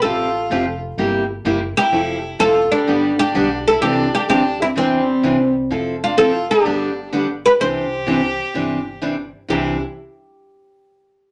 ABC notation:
X:1
M:4/4
L:1/8
Q:"Swing" 1/4=127
K:C
V:1 name="Oud"
A3 z4 G- | G2 A D2 G2 A | G G G E C3 z | z F A G3 z B |
c6 z2 | G z6 z |]
V:2 name="Fiddle"
F3 z4 E- | E2 F G,2 D2 E | D D D C G,3 z | z D F D3 z G |
G6 z2 | E z6 z |]
V:3 name="Steel-string acoustic guitar"
[C,F,CFG] z [C,F,CFG] z [C,G,_B,EG] z [C,G,B,EG] z | [F,CEA] z [F,CEA] z [D,G,B,DG] z [D,G,B,DG] z | [C,E,CD] z [C,E,CD] z [C,E,CD] z [C,E,CD] z | [F,CEA] z [F,CEA] z [D,G,B,DG] z [D,G,B,DG] z |
[C,E,CD] z [C,E,CD] z [C,E,CD] z [C,E,CD] z | [C,E,CD] z6 z |]
V:4 name="Upright bass" clef=bass
A,,,2 F,,,2 G,,,2 ^F,,, z | F,,,2 E,,, z G,,,2 B,,,2 | C,, z D,,2 E,,2 C,,2 | F,,,4 G,,,4 |
C,,4 G,,,4 | C,, z6 z |]